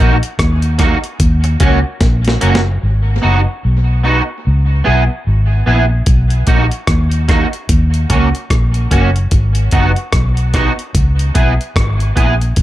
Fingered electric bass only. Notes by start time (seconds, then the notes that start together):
0.00 A#1
0.39 D#2
1.21 D#2
1.61 C#2
2.01 A#1
2.43 F#1
2.83 G#1
3.24 F#1
3.65 B1
4.47 C#2
4.87 B1
5.27 G#1
5.67 A#1
6.08 B1
6.48 A#1
6.88 D#2
7.70 D#2
8.10 C#2
8.51 A#1
8.92 F#1
9.32 G#1
9.74 F#1
10.13 B1
10.95 C#2
11.36 B1
11.76 G#1
12.17 A#1
12.57 B1